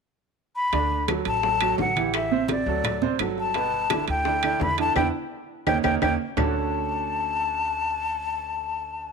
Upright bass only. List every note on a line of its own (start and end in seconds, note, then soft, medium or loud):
0.73 1.22 D2 medium
1.26 1.75 A1 medium
1.79 2.61 A1 medium
2.66 3.16 D2 medium
3.20 4.02 G1 medium
4.08 4.57 D2 medium
4.61 4.94 E2 medium
4.96 5.09 E2 medium
5.67 5.80 D#2 loud
5.85 5.98 D#2 medium
6.02 6.15 D#2 medium
6.37 9.12 D2 medium